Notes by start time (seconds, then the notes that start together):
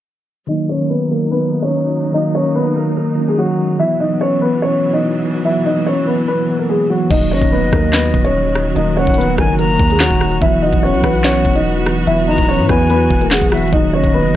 0.47 D#3 F#3 D#4 D#5
0.52 A#3
0.69 C#4 C#5
0.77 D#3 F#3
0.82 A#3
0.90 B3 B4
1.08 D#3 F#3 A#3 A#4
1.12 A#3
1.31 B3 B4
1.50 D#3 F#3
1.54 A#3
1.62 C#4 C#5
2.12 D#3 F#3 D#4 D#5
2.17 A#3
2.35 C#4 C#5
2.43 D#3 F#3
2.48 A#3
2.55 B3 B4
2.74 D#3 F#3 A#3 A#4
2.78 A#3
2.97 A#3 A#4
3.15 D#3 F#3
3.20 C#4
3.28 G#3 G#4
3.38 F#3 F#4
3.57 D#3 F#3
3.61 G#3
3.78 B2 E3 F#3 E4 E5
3.82 B3
4.00 D#4 D#5
4.09 E3 F#3
4.13 B3
4.21 C#4 C#5
4.39 E3 F#3 B3 B4
4.44 B3
4.62 C#4 C#5
4.81 E3 F#3
4.85 B3
4.93 D#4 D#5
5.42 E3 F#3 E4 E5
5.47 B3
5.66 D#4 D#5
5.73 E3 F#3
5.78 A#3
5.86 C#4 C#5
6.05 E3 F#3 B3 B4
6.10 B3
6.28 B3 B4
6.46 E3 F#3
6.51 B3
6.59 A#3 A#4
6.69 G#3 G#4
6.87 E3 F#3 F#4
6.92 B3
7.08 D#1 D#3 F#3 A#3 D#4 F#4 D#5, kick, closed hi-hat, crash
7.13 D#4
7.31 F#1 C#4 C#5 D#5
7.39 D#1 D#3 F#3 A#3, kick, closed hi-hat
7.44 D#4
7.52 B3 B4
7.62 F#1
7.71 D#2 D#3 F#3 A#3 A#4, kick, cross-stick, closed hi-hat
7.75 D#4
7.93 B3 B4, snare, clap, closed hi-hat
8.14 D#1, kick
8.24 C#4 C#5, closed hi-hat
8.55 cross-stick, closed hi-hat
8.75 D#1 D#3 F#3 A#3 D#4 D#5, closed hi-hat
8.79 D#4
8.97 C#4 C#5 F#5
9.04 D#1 D#3 F#3 A#3, kick, closed hi-hat
9.09 D#4
9.14 B4, closed hi-hat
9.18 B3, closed hi-hat
9.36 F#1 D#3 F#3 A#3 A#4 G#5, kick, cross-stick, closed hi-hat
9.41 D#4
9.59 A#3 A#4 A#5, closed hi-hat
9.79 D#2, kick
9.90 G#3 G#4, closed hi-hat
10.00 F#3 F#4, snare, clap
10.11 D#1, kick, closed hi-hat
10.19 D#3 F#3 A#3, cross-stick, closed hi-hat
10.23 D#4
10.31 closed hi-hat
10.39 E1 E3 F#3 B3 E4 E5, kick, closed hi-hat
10.44 E4
10.62 D#4 D#5 F#5
10.71 E1 E3 F#3 B3, kick, closed hi-hat
10.76 E4
10.83 C#4 C#5
10.93 B1
11.01 B1 E3 F#3 B3 B4, kick, cross-stick, closed hi-hat
11.06 E4
11.24 C#4 C#5, snare, clap, closed hi-hat
11.45 E1, kick
11.55 D#4 D#5, closed hi-hat
11.86 cross-stick, closed hi-hat
12.06 E1 E3 F#3 B3 E4 E5, closed hi-hat
12.10 E4
12.28 F#1 D#4 D#5 A#5
12.36 D#1 E3 F#3 B3, kick, closed hi-hat
12.40 E4, closed hi-hat
12.49 C#4 C#5, closed hi-hat
12.54 closed hi-hat
12.59 G#2
12.67 E2 E3 F#3 B3 B4 G#5, kick, cross-stick, closed hi-hat
12.72 E4
12.90 B3 B4, closed hi-hat
13.11 E1, kick
13.21 A#3 A#4, closed hi-hat
13.31 G#3 G#4 F#5, snare, clap
13.42 E1, kick, closed hi-hat
13.49 E3 F#3 B3 F#4 E5, cross-stick, closed hi-hat, open hi-hat
13.54 E4, closed hi-hat
13.62 closed hi-hat
13.68 D#3, closed hi-hat
13.72 D#1 D#3 F#3 A#3 D#4 D#5, kick, closed hi-hat
13.93 F#1 C#4 C#5 D#5
14.01 D#1 D#3 F#3 A#3, kick, closed hi-hat
14.06 D#4
14.14 B3 B4
14.24 F#1
14.33 D#3